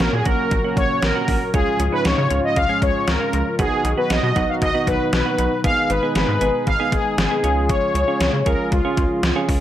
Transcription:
Already playing: analog synth pad A#2 C#3 F#3 C#4 F#4, synth keys A#3 C#4 F#4
0.00 analog synth bass A#1, analog polysynth A#4, snare, closed hi-hat
0.13 analog synth bass A#2, analog polysynth G#4
0.25 analog synth bass A#1, synth keys A#3 C#4 F#4, analog polysynth A#4, kick, closed hi-hat
0.51 analog synth bass A#1, kick, closed hi-hat
0.64 synth keys A#3 C#4 F#4
0.77 analog synth bass A#1, analog polysynth C#5, kick, closed hi-hat
1.02 analog synth bass A#1, analog polysynth A#4, snare, closed hi-hat
1.15 synth keys A#3 C#4 F#4
1.28 analog synth bass A#1, kick, open hi-hat
1.54 analog synth bass C#2, analog synth pad G#2 C#3 F3 F4, synth keys G#3 C#4 F4, analog polysynth G#4, kick, closed hi-hat
1.80 analog synth bass C#2, closed hi-hat
1.92 synth keys G#3 C#4 D#4, analog polysynth B4
2.05 analog synth bass C#2, analog polysynth C#5, snare, closed hi-hat
2.18 analog synth bass C#3
2.31 analog synth bass C#2, synth keys G#3 C#4 F4, closed hi-hat
2.44 analog polysynth D#5
2.56 analog synth bass C#2, analog polysynth F5, kick, closed hi-hat
2.69 synth keys G#3 C#4 G#4
2.82 analog synth bass C#2, analog polysynth C#5, kick, closed hi-hat
3.08 analog synth bass C#2, analog polysynth A#4, snare, closed hi-hat
3.21 synth keys G#3 C#4 F4
3.33 analog synth bass C#2, closed hi-hat
3.59 analog synth bass B1, analog synth pad B2 D#3 F#3 D#4 F#4, synth keys B3 D#4 F#4, analog polysynth G#4, kick, closed hi-hat
3.84 analog synth bass B1, closed hi-hat
3.97 synth keys B3 D#4 F#4, analog polysynth B4
4.10 analog synth bass B1, analog polysynth D#5, snare, closed hi-hat
4.23 analog synth bass B2
4.36 analog synth bass B1, synth keys B3 D#4 F#4, kick, closed hi-hat
4.49 analog polysynth F5
4.62 analog synth bass B1, analog polysynth D#5, kick, closed hi-hat
4.74 synth keys B3 D#4 F#4
4.87 analog synth bass B1, analog polysynth B4, kick, closed hi-hat
5.13 analog synth bass B1, analog polysynth B4, snare, closed hi-hat
5.26 synth keys B3 D#4 F#4
5.38 analog synth bass B1, closed hi-hat
5.64 analog synth bass G#1, analog synth pad G#3 D#4 G#4, synth keys B3 D#4 G#4, analog polysynth F5, kick, closed hi-hat
5.90 analog synth bass G#1, analog polysynth B4, closed hi-hat
6.03 synth keys B3 D#4 G#4
6.15 analog synth bass G#1, analog polysynth B4, snare, closed hi-hat
6.28 analog synth bass G#2
6.41 analog synth bass G#1, synth keys B3 D#4 G#4, closed hi-hat
6.67 analog synth bass G#1, analog polysynth F5, kick, closed hi-hat
6.80 synth keys B3 D#4 G#4
6.92 analog synth bass G#1, analog polysynth G#4, kick, closed hi-hat
7.18 analog synth bass G#1, analog polysynth G#4, snare, closed hi-hat
7.31 synth keys B3 D#4 G#4
7.44 analog synth bass C#2, analog synth pad C#3 F3 F4, synth keys C#4 F4 G#4, closed hi-hat
7.69 analog polysynth C#5, kick, closed hi-hat
7.95 analog synth bass C#2, closed hi-hat
8.08 synth keys C#4 F4 G#4
8.21 analog synth bass C#2, snare, closed hi-hat
8.33 analog synth bass C#3
8.46 analog synth bass C#2, synth keys C#4 F4 G#4, analog polysynth A#4, kick, closed hi-hat
8.72 analog synth bass C#2, analog polysynth F4, kick, closed hi-hat
8.85 synth keys C#4 F4 G#4
8.97 analog synth bass C#2, kick, closed hi-hat
9.23 analog synth bass C#2, snare, closed hi-hat
9.36 synth keys C#4 F4 G#4
9.49 analog synth bass C#2, kick, open hi-hat

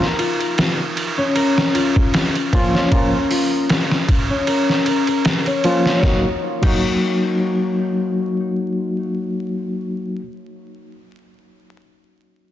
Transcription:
Already playing: harp D#4 F#4 A#4
0.02 snare
0.19 harp F4, ride
0.40 ride
0.58 snare, ride
0.97 ride
1.18 harp C#4
1.35 harp A#4, ride
1.58 snare
1.74 harp F4, ride
1.96 kick
2.14 snare, ride
2.35 ride
2.53 tine electric piano F3 A#3 C#4 F4, kick, ride
2.74 harp C#4, snare
2.91 tine electric piano F3 A#3 C#4 F4, harp A#4, kick, ride
3.30 harp F4, open hi-hat
3.69 snare, ride
3.91 snare
4.08 kick, ride
4.30 harp C#4
4.47 harp A#4, ride
4.70 snare
4.86 harp A#4, ride
5.07 harp A#4, ride
5.25 snare, ride
5.46 harp C#5, ride
5.64 tine electric piano F3 A#3 C#4 F4, ride
5.86 harp C#5, snare
6.02 tine electric piano F#3 A#3 D#4, harp D#4, kick, snare
6.07 tine electric piano F#4
6.62 tine electric piano F#3 A#3 D#4, harp D#4, kick, crash
6.66 tine electric piano F#4

